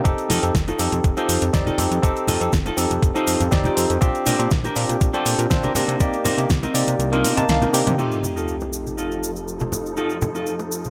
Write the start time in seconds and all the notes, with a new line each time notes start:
0.04 F1 C4 D#4 G4 A4, kick, closed hi-hat, cabasa
0.18 closed hi-hat, cabasa
0.29 F2 D#4 F4 A4, open hi-hat, high bongo, high conga, cabasa
0.42 F2 C4 D#4 G4 A4, closed hi-hat, cabasa
0.55 F1, kick, snare, closed hi-hat, cabasa
0.68 D#4 F4 A4, closed hi-hat, high bongo, cabasa
0.79 F2 C4 D#4 G4 A4, open hi-hat, cabasa
0.92 F2, closed hi-hat, high conga, cabasa
1.04 F1, kick, closed hi-hat, cabasa
1.17 C4 D#4 F4 G4 A4 C5, closed hi-hat, cabasa
1.29 F2, open hi-hat, cabasa
1.41 F2, closed hi-hat, cabasa
1.53 F1 C4 D#4 G4 D5, kick, snare, closed hi-hat, cabasa
1.66 D#4 F4 A4, closed hi-hat, high conga, cabasa
1.77 F2 C4 D#4 G4 A4, open hi-hat, high bongo, low conga, cabasa
1.91 F2, closed hi-hat, cabasa
2.02 F1 C4 D#4 G4 A4, kick, closed hi-hat, cabasa
2.16 closed hi-hat, cabasa
2.27 F2 D#4 F4 A4, open hi-hat, high bongo, high conga, low conga, cabasa
2.40 F2 C4 D#4 G4 A4, closed hi-hat, cabasa
2.53 F1, muted clean electric guitar stroke, kick, snare, closed hi-hat, cabasa
2.66 D#4 F4 A4, closed hi-hat, high bongo, cabasa
2.77 F2 C4 D#4 G4 A4, open hi-hat, cabasa
2.90 F2, closed hi-hat, high conga, cabasa
3.02 F1, kick, closed hi-hat, cabasa
3.14 C4 D#4 F4 G4 A4 C5, closed hi-hat, cabasa
3.27 F2, open hi-hat, cabasa
3.40 F2, closed hi-hat, low conga, cabasa
3.51 F1 C4 D#4 G4 D5, kick, snare, closed hi-hat, cabasa
3.64 D#4 F4 G4, closed hi-hat, high conga, cabasa
3.76 F2 C4 D#4 G4 A4, open hi-hat, cabasa
3.90 F2, closed hi-hat, cabasa
4.01 A#1 C4 D4 F4 G4, kick, closed hi-hat, cabasa
4.15 closed hi-hat, cabasa
4.26 A#2 D4 G4 A#4, open hi-hat, high bongo, high conga, cabasa
4.38 A#2 C4 D4 F4 G4, closed hi-hat, cabasa
4.51 A#1, muted clean electric guitar stroke, kick, snare, closed hi-hat, cabasa
4.64 D4 G4 A#4, closed hi-hat, high bongo, cabasa
4.75 A#2 C4 D4 F4 G4, open hi-hat, cabasa
4.89 A#2, closed hi-hat, high conga, cabasa
5.01 A#1, kick, closed hi-hat, cabasa
5.13 C4 D4 F4 G4 A4, closed hi-hat, cabasa
5.26 A#2, open hi-hat, cabasa
5.38 A#2, closed hi-hat, cabasa
5.50 A#1 C4 D4 F4 C5, kick, snare, closed hi-hat, cabasa
5.63 D4 G4 A#4, closed hi-hat, high conga, cabasa
5.75 C3 A#3 C4 D4 D#4 G4 A#4, open hi-hat, high bongo, low conga, cabasa
5.88 C3, closed hi-hat, cabasa
6.00 C2 A#3 D#4 G4 D5, kick, closed hi-hat, cabasa
6.13 closed hi-hat, cabasa
6.24 C3 C4 D#4 A#4, open hi-hat, high bongo, high conga, low conga, cabasa
6.37 C3 A#3 D4 D#4 G4, closed hi-hat, cabasa
6.50 C2, muted clean electric guitar stroke, kick, snare, closed hi-hat, cabasa
6.62 C4 D#4 A#4, closed hi-hat, high bongo, cabasa
6.74 C3 A#3 D#4 G4 D5, open hi-hat, cabasa
6.87 C3, closed hi-hat, high conga, cabasa
6.99 C2, closed hi-hat, cabasa
7.12 A#3 C4 D4 D#4 F4 A#4, closed hi-hat, cabasa
7.24 C3 D#5, open hi-hat, cabasa
7.36 C3 A#3 D#4 A5, closed hi-hat, low conga, cabasa
7.49 C2 F5, snare, closed hi-hat, high tom, cabasa
7.62 C4 D#4 A#4, closed hi-hat, high tom, high conga, cabasa
7.73 C3 A#3 D4 D#4 G4 G5, open hi-hat, cabasa
7.87 C3, closed hi-hat, mid tom, low conga, cabasa
7.97 F2 F3 A3 C4 D#4 F4 G4 A4, crash, sub drop, cabasa
8.12 cabasa
8.23 high bongo, high conga, cabasa
8.36 D#4 F4 A4, cabasa
8.48 cabasa
8.60 high bongo, cabasa
8.73 muted clean electric guitar stroke, cabasa
8.87 high conga, cabasa
8.97 D#4 F4 A4, cabasa
9.12 cabasa
9.23 cabasa
9.36 cabasa
9.48 cabasa
9.60 muted clean electric guitar stroke, high conga, cabasa
9.72 muted clean electric guitar stroke, high bongo, low conga, cabasa
9.86 cabasa
9.97 D#4 F4 A4, cabasa
10.10 cabasa
10.21 high bongo, high conga, low conga, cabasa
10.35 D#4 F4 A4, cabasa
10.47 cabasa
10.59 high bongo, cabasa
10.71 muted clean electric guitar stroke, cabasa
10.84 high conga, cabasa